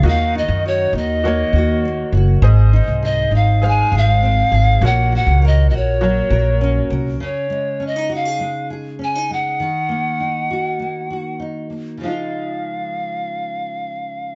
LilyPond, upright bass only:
\new Staff \with { instrumentName = "Upright bass" } { \clef bass \time 4/4 \key des \major \tempo 4 = 100 ees,8. ges,8. ees,4 ees,4 ges,,8 | aes,,8. c,8. aes,,4 aes,,4 aes,,8 | bes,,8. des,8. bes,,4 bes,,4 c,8 | r1 |
r1 | r1 | }